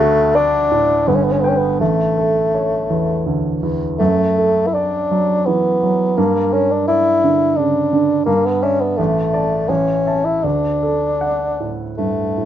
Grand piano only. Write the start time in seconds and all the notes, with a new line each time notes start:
Already playing: D2 F#4
0.35 D5
0.72 A2
1.07 G1
1.44 B4 G5
1.80 A1
2.17 A4
2.54 C#5
2.90 E2
3.26 D2
3.63 E2
4.00 F#2
4.38 A4
4.75 D5
5.11 F#3
5.47 E3
5.83 F#3
6.18 G2
6.52 A#4
6.89 D5
7.24 D3
7.58 C#3
7.93 D3
8.27 G2
8.63 D5 E5
8.99 A1
9.33 D5 A5
9.69 A1
10.06 E5 A5
10.44 D2
10.83 A4
11.21 F#5
11.60 A2
11.99 G2
12.38 A2